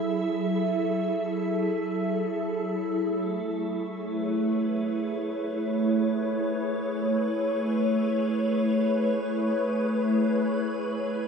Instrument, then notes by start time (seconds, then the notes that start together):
ambient pad
Already playing: F#3 E4 G#4 A4 E5
2.98 A3
3.62 G#4
3.86 C#5
3.98 B4
11.23 E3